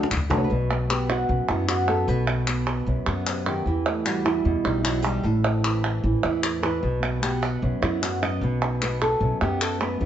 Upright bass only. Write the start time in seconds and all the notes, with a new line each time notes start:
0.11 D2
0.31 C2
0.50 B1
1.29 B1
1.48 F#2
2.08 B1
2.87 B1
3.07 F#2
3.66 E2
4.45 E2
4.65 B1
5.24 A1
6.04 A1
6.23 E2
6.83 B1
7.62 B1
7.82 F#2
8.41 B1
9.20 B1
9.41 F#2
10.00 E2